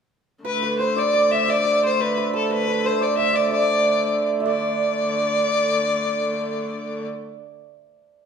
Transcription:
0.44 4.44 D3 medium
0.44 4.44 A3 medium
0.44 0.62 B4 medium
0.44 0.78 B4 medium
0.63 0.85 B4 medium
0.79 1.00 C5 medium
0.79 1.82 C5 medium
0.96 1.14 D5 medium
0.96 1.33 D5 medium
1.14 1.48 D5 medium
1.31 3.17 E5 medium
1.31 1.51 E5 medium
1.48 1.64 D5 medium
1.48 1.83 D5 medium
1.65 3.00 D5 medium
1.83 2.06 C5 medium
1.83 2.02 C5 medium
2.00 2.17 B4 medium
2.00 2.34 B4 medium
2.17 2.50 B4 medium
2.33 5.26 A4 medium
2.33 2.50 A4 medium
2.50 2.67 B4 medium
2.50 2.87 B4 medium
2.68 2.90 B4 medium
2.84 5.48 C5 medium
2.84 3.04 C5 medium
3.01 3.33 D5 medium
3.01 3.17 D5 medium
3.17 4.40 E5 medium
3.17 3.37 E5 medium
3.33 3.51 D5 medium
3.33 3.50 D5 medium
3.51 4.45 D5 medium
3.51 4.26 D5 medium
4.40 7.06 A3 medium
4.40 6.70 E5 medium
4.44 7.07 D3 medium
4.44 7.74 D5 medium
4.44 7.05 D5 medium

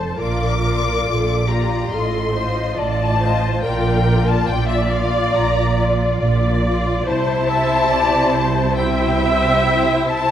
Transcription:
0.00 0.19 A4 medium
0.00 0.19 C5 medium
0.00 0.20 A5 medium
0.19 0.97 A#1 medium
0.19 0.97 A#2 medium
0.19 0.63 F4 medium
0.19 1.05 A#4 medium
0.19 0.63 D5 medium
0.19 1.47 D6 loud
0.64 1.47 F4 medium
0.64 1.48 D5 medium
1.06 1.82 A#1 medium
1.06 1.82 A#2 medium
1.06 1.49 A4 medium
1.49 1.91 F4 medium
1.49 1.92 G4 medium
1.49 1.91 D5 medium
1.49 1.92 A#5 medium
1.91 2.68 A1 medium
1.91 2.68 A2 medium
1.91 2.33 F4 medium
1.91 2.36 A4 medium
1.91 2.33 D#5 medium
1.91 2.79 C6 medium
2.34 3.19 F4 medium
2.34 2.78 C5 medium
2.34 3.20 D#5 medium
2.77 3.55 A1 medium
2.77 3.55 A2 medium
2.77 3.20 D5 medium
2.77 3.64 A5 loud
3.21 3.64 F4 medium
3.21 3.65 C5 medium
3.21 3.64 D#5 medium
3.63 4.40 A#1 loud
3.63 4.40 A#2 medium
3.63 4.06 F4 medium
3.63 4.50 A#4 medium
3.63 4.05 D5 medium
3.63 4.27 G5 loud
4.07 4.90 F4 medium
4.07 4.91 D5 medium
4.28 4.50 A5 loud
4.49 5.25 A#1 medium
4.49 5.26 A#2 medium
4.49 6.19 D5 loud
4.49 4.71 G5 loud
4.68 4.91 E5 loud
4.92 5.76 F4 medium
4.92 5.76 D5 medium
4.92 5.35 F5 loud
5.34 6.11 A#1 medium
5.34 6.11 A#2 medium
5.34 5.78 A#5 loud
5.78 6.63 F4 medium
5.78 6.63 D5 medium
6.20 6.98 A#1 medium
6.20 6.97 A#2 medium
6.20 7.06 D5 loud
6.65 7.07 F4 medium
6.65 7.07 D5 medium
7.06 10.31 C2 loud
7.06 10.31 C3 medium
7.06 8.73 E4 medium
7.06 7.50 C5 loud
7.06 8.74 C5 medium
7.06 8.74 A5 loud
7.49 7.92 E5 medium
7.91 8.34 D5 medium
8.34 8.78 C5 medium
8.77 10.31 E4 medium
8.77 10.31 C5 medium
8.77 10.31 E5 loud
8.77 10.08 G5 loud
10.07 10.31 A5 loud

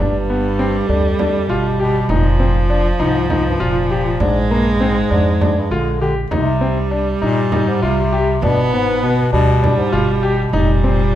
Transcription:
0.00 0.80 G1 medium
0.00 0.89 G2 medium
0.00 2.11 G3 medium
0.00 0.15 D4 medium
0.29 0.44 B3 medium
0.59 0.74 C4 medium
0.88 1.43 D2 medium
0.88 1.50 F2 medium
0.88 1.05 D4 medium
1.19 1.34 D4 medium
1.19 frame drum medium
1.48 2.03 G1 medium
1.48 1.79 B2 medium
1.48 1.65 F4 medium
1.80 2.11 B2 medium
1.80 1.95 G4 medium
2.09 2.90 F1 loud
2.09 2.70 A#2 medium
2.09 4.22 F3 medium
2.09 2.25 D#4 medium
2.09 frame drum medium
2.40 2.55 C4 medium
2.70 2.85 D4 medium
2.99 3.54 C2 medium
2.99 3.43 G#2 medium
2.99 3.15 D#4 medium
3.30 3.45 D#4 medium
3.30 frame drum medium
3.47 3.62 G2 medium
3.60 4.14 F1 medium
3.60 4.22 A#2 medium
3.60 3.75 F4 medium
3.90 4.06 G4 medium
4.20 5.01 A#1 medium
4.20 4.53 G#2 medium
4.20 6.01 G#3 medium
4.20 4.36 D4 medium
4.20 frame drum medium
4.51 4.83 G2 medium
4.51 4.66 A#3 medium
4.80 5.11 G#2 medium
4.80 4.96 C4 medium
5.10 5.65 F2 medium
5.10 5.53 G#2 medium
5.10 5.26 D4 medium
5.41 5.56 D4 medium
5.41 frame drum medium
5.57 5.72 G2 medium
5.71 6.25 A#1 medium
5.71 6.00 D3 medium
5.71 5.87 F4 medium
6.01 6.15 D3 medium
6.01 6.17 G4 medium
6.30 7.13 C2 medium
6.30 6.87 C3 medium
6.30 8.39 G3 medium
6.30 6.46 D#4 medium
6.30 frame drum medium
6.61 6.76 C4 medium
6.91 7.06 D4 medium
7.21 7.76 G2 medium
7.21 7.69 A#2 medium
7.21 7.37 D#4 medium
7.52 7.67 D#4 medium
7.52 frame drum medium
7.67 7.83 G#2 medium
7.82 8.37 C2 medium
7.82 8.45 C3 medium
7.82 7.98 F4 medium
8.12 8.28 G4 medium
8.42 9.23 G1 loud
8.42 8.74 B2 loud
8.42 9.30 B3 medium
8.42 8.58 D4 medium
8.42 frame drum medium
8.73 9.04 G#2 medium
8.73 8.88 B3 medium
9.03 9.32 B2 medium
9.03 9.18 B3 medium
9.33 9.87 D2 medium
9.33 9.79 B2 loud
9.33 10.50 G3 medium
9.33 9.48 D4 medium
9.63 9.78 D4 medium
9.63 frame drum medium
9.77 9.94 G#2 medium
9.92 10.47 G1 medium
9.92 10.53 B2 medium
9.92 10.08 F4 medium
10.23 10.38 G4 medium
10.53 11.15 F1 medium
10.53 11.15 A#2 medium
10.53 11.15 G3 medium
10.53 10.69 D#4 medium
10.53 frame drum soft
10.84 10.99 C4 medium

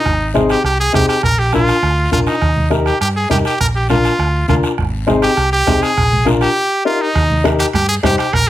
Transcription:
0.00 0.32 D#4 medium
0.05 0.53 G#1 loud
0.05 bombo low medium
0.05 bombo rim medium
0.05 long guiro medium
0.34 0.55 C4 medium
0.34 0.55 D#4 medium
0.34 0.56 G#4 medium
0.34 bombo rim medium
0.34 high conga medium
0.34 short guiro medium
0.49 0.64 G4 medium
0.49 bombo rim medium
0.49 short guiro medium
0.64 0.88 C2 medium
0.64 0.79 G4 medium
0.64 bombo rim medium
0.64 long guiro medium
0.80 0.93 G#4 medium
0.93 1.06 C2 medium
0.93 1.14 C4 medium
0.93 1.14 D#4 medium
0.93 1.08 G4 medium
0.93 1.14 G#4 medium
0.93 bombo low medium
0.93 bombo rim medium
0.93 high conga medium
0.93 short guiro medium
1.09 1.23 G4 medium
1.09 bombo rim medium
1.09 short guiro medium
1.23 1.71 A#1 loud
1.23 1.40 A#4 loud
1.23 bombo low medium
1.23 bombo rim medium
1.23 long guiro medium
1.39 1.53 G4 medium
1.52 1.74 D4 medium
1.52 1.74 F4 medium
1.52 2.09 F4 medium
1.52 1.74 A#4 medium
1.52 bombo rim medium
1.52 high conga medium
1.52 short guiro medium
1.68 bombo rim medium
1.68 short guiro medium
1.82 2.06 D2 medium
1.82 bombo rim medium
1.82 long guiro medium
2.11 2.24 A#1 medium
2.11 2.32 D4 medium
2.11 2.32 F4 medium
2.11 2.19 F4 medium
2.11 2.33 A#4 medium
2.11 bombo low medium
2.11 bombo rim medium
2.11 high conga medium
2.11 short guiro medium
2.27 2.69 D#4 medium
2.27 bombo rim medium
2.27 short guiro medium
2.42 2.89 D#2 loud
2.42 bombo low medium
2.42 bombo rim medium
2.42 long guiro medium
2.56 high conga medium
2.70 2.92 D#4 medium
2.70 2.92 G4 medium
2.70 2.92 A#4 medium
2.70 bombo rim medium
2.70 high conga medium
2.70 short guiro medium
2.86 3.00 G4 medium
2.86 bombo rim medium
2.86 short guiro medium
3.01 3.25 G2 medium
3.01 3.08 G4 medium
3.01 bombo rim medium
3.01 long guiro medium
3.16 3.30 G#4 medium
3.29 3.42 G2 medium
3.29 3.51 D#4 medium
3.29 3.51 G4 medium
3.29 3.37 G4 medium
3.29 3.51 A#4 medium
3.29 bombo low medium
3.29 bombo rim medium
3.29 high conga medium
3.29 short guiro medium
3.45 3.60 G4 medium
3.45 bombo rim medium
3.45 short guiro medium
3.60 4.08 A#1 loud
3.60 3.67 A#4 medium
3.60 bombo low medium
3.60 bombo rim medium
3.60 long guiro medium
3.75 3.89 G4 medium
3.89 4.10 D4 medium
3.89 4.45 F4 medium
3.89 4.10 F4 medium
3.89 4.11 A#4 medium
3.89 bombo rim medium
3.89 high conga medium
3.89 short guiro medium
4.04 bombo rim medium
4.04 short guiro medium
4.19 4.43 D2 medium
4.19 bombo rim medium
4.19 long guiro medium
4.48 4.61 D2 medium
4.48 4.69 D4 medium
4.48 4.69 F4 medium
4.48 4.55 F4 medium
4.48 4.70 A#4 medium
4.48 bombo low medium
4.48 bombo rim medium
4.48 high conga medium
4.48 short guiro medium
4.63 bombo rim medium
4.63 short guiro medium
4.78 5.26 G#1 loud
4.78 bombo low medium
4.78 bombo rim medium
4.78 long guiro medium
5.07 5.28 C4 medium
5.07 5.28 D#4 medium
5.07 5.29 G#4 medium
5.07 bombo rim medium
5.07 high conga medium
5.07 short guiro medium
5.22 5.50 G4 medium
5.22 bombo rim medium
5.22 short guiro medium
5.37 5.61 C2 medium
5.37 bombo rim medium
5.37 long guiro medium
5.53 5.84 G4 medium
5.66 5.79 C2 medium
5.66 5.88 C4 medium
5.66 5.88 D#4 medium
5.66 5.88 G#4 medium
5.66 bombo low medium
5.66 bombo rim medium
5.66 high conga medium
5.66 short guiro medium
5.82 6.27 G#4 loud
5.82 bombo rim medium
5.82 short guiro medium
5.97 6.44 A#1 medium
5.97 bombo low medium
5.97 bombo rim medium
5.97 long guiro medium
6.12 high conga medium
6.25 6.47 D4 medium
6.25 6.47 F4 medium
6.25 6.47 A#4 medium
6.25 bombo rim medium
6.25 high conga medium
6.25 short guiro medium
6.41 6.83 G4 medium
6.41 bombo rim medium
6.41 short guiro medium
6.85 7.06 D#4 medium
6.85 7.03 F4 medium
6.85 7.06 G4 medium
6.85 7.06 A#4 medium
7.02 7.45 D#4 medium
7.15 7.62 D#2 loud
7.15 bombo low medium
7.15 bombo rim medium
7.15 high timbale medium
7.15 long guiro medium
7.30 high conga medium
7.44 7.65 D#4 medium
7.44 7.65 G4 medium
7.44 7.65 A#4 medium
7.44 bombo rim medium
7.44 high conga medium
7.44 high timbale medium
7.44 short guiro medium
7.59 7.66 G4 medium
7.59 bombo rim medium
7.59 high timbale medium
7.59 short guiro medium
7.73 7.98 G2 medium
7.73 7.88 G4 medium
7.73 bombo rim medium
7.73 low conga medium
7.73 high timbale medium
7.73 long guiro medium
7.89 7.95 G#4 medium
8.03 8.15 G2 medium
8.03 8.24 D#4 medium
8.03 8.24 G4 medium
8.03 8.18 G4 loud
8.03 8.24 C5 medium
8.03 bombo low medium
8.03 bombo rim medium
8.03 high conga medium
8.03 high timbale medium
8.03 short guiro medium
8.18 8.35 G4 medium
8.18 bombo rim medium
8.18 high timbale medium
8.18 short guiro medium
8.33 8.50 A#1 loud
8.33 8.49 A#4 loud
8.33 bombo low medium
8.33 bombo rim medium
8.33 high timbale medium
8.33 long guiro medium

